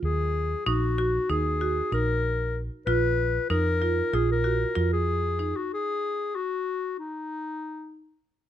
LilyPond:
<<
  \new Staff \with { instrumentName = "Clarinet" } { \time 9/8 \key bes \phrygian \tempo 4. = 63 aes'4 ges'4 aes'4 bes'4 r8 | ces''4 bes'4 aes'16 bes'4 aes'4 ges'16 | aes'4 ges'4 ees'2 r8 | }
  \new Staff \with { instrumentName = "Marimba" } { \time 9/8 \key bes \phrygian r4 ees'8 ges'8 ees'8 ges'8 ees'4 r8 | f'4 ees'8 f'8 f'8 ges'8 f'4 ees'8~ | ees'8 r1 | }
  \new Staff \with { instrumentName = "Fretless electric bass" } { \clef bass \time 9/8 \key bes \phrygian ees,4 bes,,4 ees,4 bes,,4. | bes,,4 f,4 bes,,4 f,4. | r1 r8 | }
>>